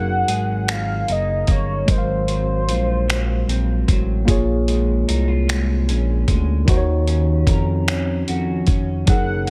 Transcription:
0.00 0.24 F#1 loud
0.00 1.83 F#3 medium
0.00 1.90 F#3 medium
0.00 0.69 A#3 medium
0.00 1.84 D#4 medium
0.00 1.85 G#4 soft
0.00 1.87 A#4 medium
0.00 0.72 F#5 loud
0.28 1.04 G#1 medium
0.28 2.31 G#4 soft
0.28 closed hi-hat medium
0.68 1.48 A#3 medium
0.68 1.14 F5 loud
0.68 finger snap loud
0.68 closed hi-hat medium
1.08 1.44 F#1 medium
1.08 2.68 D#4 medium
1.08 1.53 D#5 medium
1.08 closed hi-hat soft
1.47 1.84 G1 medium
1.47 3.48 A#3 medium
1.47 1.89 C#5 medium
1.47 kick medium
1.47 closed hi-hat soft
1.86 2.70 G#1 loud
1.86 4.27 G#2 medium
1.86 4.23 F#3 medium
1.86 4.23 G#3 medium
1.86 4.24 A#4 medium
1.86 kick loud
1.86 closed hi-hat medium
1.90 4.25 C5 medium
1.90 3.86 C5 medium
1.90 1.96 D#5 soft
1.98 4.29 F5 medium
2.28 3.07 F#3 medium
2.28 closed hi-hat soft
2.68 3.44 A#1 medium
2.68 5.08 F4 medium
2.68 closed hi-hat medium
3.08 3.88 F#3 medium
3.08 finger snap loud
3.08 closed hi-hat medium
3.48 3.84 A#1 medium
3.48 4.36 C4 medium
3.48 closed hi-hat soft
3.88 4.24 A1 medium
3.88 4.36 F#3 medium
3.88 kick medium
3.88 closed hi-hat medium
4.25 5.04 A#1 medium
4.25 6.67 A#2 medium
4.25 6.62 A#3 medium
4.25 6.63 F4 medium
4.25 6.64 G#4 medium
4.25 kick loud
4.25 closed hi-hat medium
4.31 6.65 C#5 medium
4.68 5.47 G#3 medium
4.68 closed hi-hat soft
5.08 5.91 C2 medium
5.08 5.28 D#4 medium
5.08 closed hi-hat medium
5.28 6.76 F4 soft
5.48 6.27 G#3 medium
5.48 finger snap loud
5.48 closed hi-hat medium
5.89 6.25 A#1 loud
5.89 7.08 C#4 medium
5.89 closed hi-hat soft
6.28 6.64 D2 medium
6.28 6.76 G#3 medium
6.28 kick medium
6.28 closed hi-hat soft
6.65 7.44 D#2 loud
6.65 9.02 D#3 medium
6.65 9.50 D#3 medium
6.65 9.03 D#4 medium
6.65 9.04 F#4 medium
6.65 kick loud
6.65 closed hi-hat medium
6.71 6.76 C5 medium
6.77 9.08 C#5 medium
7.07 7.89 C#4 soft
7.07 closed hi-hat soft
7.47 8.23 F2 medium
7.47 9.50 A#4 soft
7.47 kick medium
7.47 closed hi-hat medium
7.88 8.67 C#4 medium
7.88 finger snap loud
7.88 closed hi-hat medium
8.28 8.70 F2 medium
8.28 9.50 F#4 medium
8.28 closed hi-hat soft
8.67 9.04 F1 medium
8.67 9.47 C#4 medium
8.67 kick medium
8.67 closed hi-hat soft
9.06 9.50 F#1 medium
9.06 9.50 F#3 medium
9.06 9.50 D#4 soft
9.06 9.50 G#4 medium
9.06 9.50 F#5 loud
9.06 kick loud
9.06 closed hi-hat medium
9.12 9.50 A#4 medium

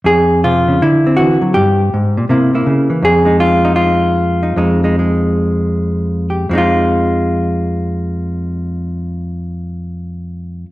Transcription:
0.04 0.80 F2 medium
0.04 0.44 G#4 medium
0.44 0.68 C3 medium
0.44 0.81 F4 medium
0.68 0.81 C#3 medium
0.82 1.54 D3 medium
0.82 1.55 E4 medium
1.07 1.54 C4 soft
1.17 1.41 E3 medium
1.17 1.54 F#4 medium
1.42 1.55 F#3 medium
1.54 1.92 G2 medium
1.54 3.01 G4 medium
1.94 2.16 G#2 medium
2.17 2.29 A#2 medium
2.29 2.66 C3 medium
2.29 2.53 A#3 soft
2.29 2.53 E4 soft
2.55 3.01 A#3 soft
2.55 3.02 E4 soft
2.66 2.89 C#3 medium
2.90 3.02 E3 medium
3.02 4.56 F2 medium
3.02 3.40 G#4 medium
3.25 4.57 G#3 soft
3.25 3.64 D#4 soft
3.40 3.75 F4 medium
3.65 4.16 D#4 medium
3.76 6.29 F4 medium
4.43 4.57 D#4 soft
4.56 6.48 F2 medium
4.56 4.83 G#3 soft
4.56 4.83 D#4 soft
4.84 4.98 G#3 soft
4.84 6.48 D#4 soft
4.99 6.52 G#3 soft
6.30 6.47 G4 soft
6.49 10.64 F2 medium
6.49 10.65 F3 medium
6.49 10.67 G#3 medium
6.55 10.69 D#4 medium
6.55 10.68 F4 medium

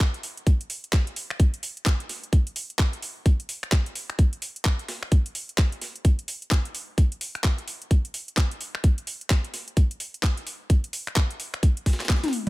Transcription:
0.00 kick loud
0.00 snare loud
0.00 clap loud
0.00 closed hi-hat medium
0.14 closed hi-hat medium
0.23 closed hi-hat medium
0.23 open hi-hat loud
0.37 closed hi-hat soft
0.47 kick loud
0.47 closed hi-hat medium
0.61 closed hi-hat medium
0.70 closed hi-hat medium
0.70 open hi-hat loud
0.84 closed hi-hat soft
0.93 kick loud
0.93 snare loud
0.93 clap loud
0.93 closed hi-hat medium
1.07 closed hi-hat medium
1.16 closed hi-hat medium
1.16 open hi-hat loud
1.30 finger snap medium
1.40 kick loud
1.40 closed hi-hat medium
1.54 closed hi-hat soft
1.63 closed hi-hat medium
1.63 open hi-hat loud
1.77 closed hi-hat soft
1.86 kick loud
1.86 snare loud
1.86 clap loud
1.86 closed hi-hat medium
2.00 closed hi-hat medium
2.09 snare soft
2.09 closed hi-hat medium
2.09 open hi-hat loud
2.23 closed hi-hat soft
2.33 kick loud
2.33 closed hi-hat medium
2.47 closed hi-hat soft
2.56 closed hi-hat medium
2.56 open hi-hat loud
2.70 closed hi-hat soft
2.79 kick loud
2.79 snare loud
2.79 clap loud
2.79 closed hi-hat medium
2.93 closed hi-hat medium
3.02 closed hi-hat medium
3.02 open hi-hat loud
3.26 kick loud
3.26 closed hi-hat medium
3.40 closed hi-hat medium
3.49 closed hi-hat medium
3.49 open hi-hat loud
3.63 finger snap medium
3.63 closed hi-hat soft
3.72 kick loud
3.72 snare loud
3.72 clap loud
3.72 closed hi-hat medium
3.86 closed hi-hat soft
3.95 closed hi-hat medium
3.95 open hi-hat medium
4.10 finger snap medium
4.10 closed hi-hat soft
4.19 kick loud
4.19 closed hi-hat medium
4.33 closed hi-hat soft
4.42 closed hi-hat medium
4.42 open hi-hat loud
4.56 closed hi-hat soft
4.65 kick loud
4.65 clap loud
4.65 closed hi-hat medium
4.79 closed hi-hat soft
4.88 snare loud
4.88 closed hi-hat medium
4.88 open hi-hat loud
5.03 finger snap medium
5.12 kick loud
5.12 closed hi-hat medium
5.26 closed hi-hat medium
5.35 closed hi-hat medium
5.35 open hi-hat loud
5.49 closed hi-hat soft
5.58 kick loud
5.58 snare loud
5.58 clap loud
5.58 closed hi-hat medium
5.72 closed hi-hat soft
5.82 snare soft
5.82 closed hi-hat medium
5.82 open hi-hat medium
5.96 closed hi-hat soft
6.05 kick loud
6.05 closed hi-hat medium
6.19 closed hi-hat soft
6.28 closed hi-hat medium
6.28 open hi-hat loud
6.42 closed hi-hat soft
6.51 kick loud
6.51 snare loud
6.51 clap loud
6.51 closed hi-hat medium
6.65 closed hi-hat medium
6.75 closed hi-hat medium
6.75 open hi-hat medium
6.98 kick loud
6.98 closed hi-hat medium
7.12 closed hi-hat medium
7.21 closed hi-hat medium
7.21 open hi-hat loud
7.35 finger snap medium
7.35 closed hi-hat soft
7.44 kick loud
7.44 snare loud
7.44 clap loud
7.44 closed hi-hat medium
7.58 closed hi-hat medium
7.68 closed hi-hat medium
7.68 open hi-hat medium
7.82 closed hi-hat soft
7.91 kick loud
7.91 closed hi-hat medium
8.05 closed hi-hat medium
8.14 closed hi-hat medium
8.14 open hi-hat loud
8.28 closed hi-hat soft
8.37 kick loud
8.37 snare loud
8.37 clap loud
8.37 closed hi-hat medium
8.51 closed hi-hat medium
8.61 closed hi-hat medium
8.61 open hi-hat medium
8.75 finger snap medium
8.84 kick loud
8.84 closed hi-hat medium
8.98 closed hi-hat medium
9.07 closed hi-hat medium
9.07 open hi-hat loud
9.21 closed hi-hat soft
9.30 kick loud
9.30 snare loud
9.30 clap loud
9.30 closed hi-hat medium
9.44 closed hi-hat medium
9.54 snare soft
9.54 closed hi-hat medium
9.54 open hi-hat medium
9.68 closed hi-hat soft
9.77 kick loud
9.77 closed hi-hat medium
9.91 closed hi-hat medium
10.00 closed hi-hat medium
10.00 open hi-hat loud
10.14 closed hi-hat soft
10.23 kick loud
10.23 snare loud
10.23 clap loud
10.23 closed hi-hat medium
10.37 closed hi-hat medium
10.47 closed hi-hat medium
10.47 open hi-hat medium
10.70 kick loud
10.70 closed hi-hat medium
10.84 closed hi-hat medium
10.93 closed hi-hat medium
10.93 open hi-hat loud
11.07 finger snap medium
11.07 closed hi-hat soft
11.16 kick loud
11.16 snare loud
11.16 clap loud
11.16 closed hi-hat medium
11.31 closed hi-hat medium
11.40 closed hi-hat medium
11.40 open hi-hat medium
11.54 finger snap medium
11.54 closed hi-hat soft
11.63 kick loud
11.63 closed hi-hat medium
11.77 closed hi-hat medium
11.86 kick medium
11.86 snare medium
11.86 closed hi-hat medium
11.86 open hi-hat loud
11.93 snare medium
11.93 closed hi-hat medium
12.00 snare medium
12.00 clap soft
12.00 closed hi-hat medium
12.00 closed hi-hat soft
12.05 snare medium
12.05 closed hi-hat medium
12.09 kick loud
12.09 snare medium
12.09 clap loud
12.09 closed hi-hat medium
12.16 snare medium
12.16 closed hi-hat medium
12.24 snare medium
12.24 closed hi-hat medium
12.24 high tom medium
12.28 snare medium
12.28 closed hi-hat medium
12.33 closed hi-hat medium
12.33 open hi-hat medium

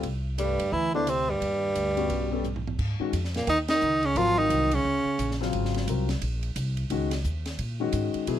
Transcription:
0.03 0.56 C2 medium
0.03 ride soft
0.38 0.73 G2 medium
0.38 0.74 G3 medium
0.38 0.57 A3 medium
0.38 0.58 D4 soft
0.38 0.58 G4 soft
0.38 0.58 B4 medium
0.38 hi-hat pedal medium
0.38 ride medium
0.59 0.72 D2 medium
0.59 ride medium
0.72 1.38 D2 medium
0.72 0.93 E3 medium
0.72 0.94 E4 medium
0.94 1.09 D3 medium
0.94 1.06 B3 medium
0.94 1.11 D4 medium
0.94 1.06 E4 medium
0.94 1.06 A4 medium
0.94 1.06 C5 medium
1.07 1.30 C3 medium
1.07 1.32 C4 medium
1.07 hi-hat pedal soft
1.07 ride medium
1.29 2.66 G2 medium
1.29 2.67 G3 medium
1.41 1.73 D#2 medium
1.41 ride soft
1.75 2.08 D2 medium
1.75 hi-hat pedal medium
1.75 ride medium
1.97 2.29 G3 medium
1.97 2.29 B3 soft
1.97 2.29 C#4 soft
1.97 2.30 F#4 medium
1.97 ride soft
2.10 2.75 B1 medium
2.10 ride soft
2.31 2.43 G3 medium
2.31 2.43 B3 soft
2.31 2.44 C#4 soft
2.31 2.44 A4 medium
2.44 floor tom soft
2.44 hi-hat pedal soft
2.56 floor tom soft
2.67 floor tom medium
2.78 2.98 G#2 medium
2.78 kick medium
2.78 crash medium
3.00 3.12 D#3 medium
3.00 3.12 G#3 medium
3.00 3.12 C#4 medium
3.00 3.12 F#4 medium
3.00 muted upright bass stroke soft
3.13 3.46 F2 medium
3.13 hi-hat pedal soft
3.13 ride medium
3.24 snare soft
3.34 3.47 A#2 medium
3.34 3.48 A#3 medium
3.34 snare soft
3.34 ride soft
3.47 3.81 D#2 medium
3.47 3.57 D#3 medium
3.47 3.58 D#4 medium
3.47 ride medium
3.68 4.05 D#3 medium
3.68 4.07 D#4 medium
3.68 snare medium
3.68 ride medium
3.81 4.15 C#2 medium
3.81 hi-hat pedal medium
4.03 4.19 C#3 medium
4.03 4.19 C#4 medium
4.03 ride soft
4.16 4.49 G#1 medium
4.16 4.39 F3 medium
4.16 4.68 F#3 medium
4.16 4.68 C4 medium
4.16 4.68 F4 medium
4.16 4.40 F4 loud
4.16 4.68 A#4 medium
4.16 ride medium
4.38 4.75 D#3 medium
4.38 4.76 D#4 medium
4.50 4.84 C2 medium
4.50 hi-hat pedal medium
4.50 ride medium
4.71 5.41 C#3 medium
4.71 5.42 C#4 medium
4.71 ride medium
4.85 5.05 C#2 medium
5.05 muted upright bass stroke soft
5.19 5.52 A#1 medium
5.19 hi-hat pedal medium
5.19 ride medium
5.31 snare soft
5.41 5.85 C#3 medium
5.41 5.85 F#3 medium
5.41 5.85 C4 medium
5.41 5.86 F4 medium
5.41 snare soft
5.53 5.87 G#1 medium
5.53 ride medium
5.65 snare soft
5.74 snare soft
5.74 ride soft
5.87 6.21 C2 medium
5.87 6.07 F#3 soft
5.87 6.07 C4 soft
5.87 6.08 F4 soft
5.87 6.08 A#4 medium
5.87 hi-hat pedal medium
5.87 ride medium
6.09 snare soft
6.09 ride soft
6.21 6.55 A#1 medium
6.21 ride medium
6.43 ride soft
6.56 6.89 C2 medium
6.56 hi-hat pedal medium
6.56 ride medium
6.77 ride soft
6.90 7.24 C#2 medium
6.90 7.10 D#3 medium
6.90 7.10 G#3 medium
6.90 7.10 C#4 medium
6.90 7.10 F#4 medium
6.90 ride medium
7.11 snare soft
7.11 ride medium
7.24 7.58 D#2 medium
7.24 hi-hat pedal medium
7.46 snare soft
7.46 ride soft
7.59 7.92 A#2 medium
7.59 ride medium
7.80 8.25 D#3 medium
7.80 8.25 G#3 medium
7.80 8.25 C#4 medium
7.80 8.25 F#4 medium
7.93 8.13 G#2 medium
7.93 hi-hat pedal medium
7.93 ride medium
8.14 muted upright bass stroke soft
8.14 ride soft
8.27 8.39 B2 medium
8.27 8.39 F#3 medium
8.27 8.39 B3 medium
8.27 8.39 E4 medium
8.27 8.39 G#4 medium
8.27 ride medium

